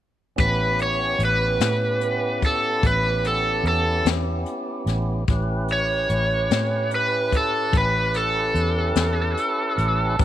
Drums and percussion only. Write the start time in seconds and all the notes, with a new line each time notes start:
0.38 kick, closed hi-hat
0.79 closed hi-hat
1.20 closed hi-hat
1.60 snare, closed hi-hat
2.01 closed hi-hat
2.42 kick, closed hi-hat
2.83 kick, closed hi-hat
3.24 closed hi-hat
3.65 closed hi-hat
4.06 snare, closed hi-hat
4.46 closed hi-hat
4.87 snare, closed hi-hat
5.28 kick, closed hi-hat
5.68 closed hi-hat
6.09 closed hi-hat
6.51 snare, closed hi-hat
6.91 closed hi-hat
7.32 kick, closed hi-hat
7.73 kick, closed hi-hat
8.14 closed hi-hat
8.55 closed hi-hat
8.96 snare, closed hi-hat
9.37 closed hi-hat
9.78 closed hi-hat
10.19 kick, closed hi-hat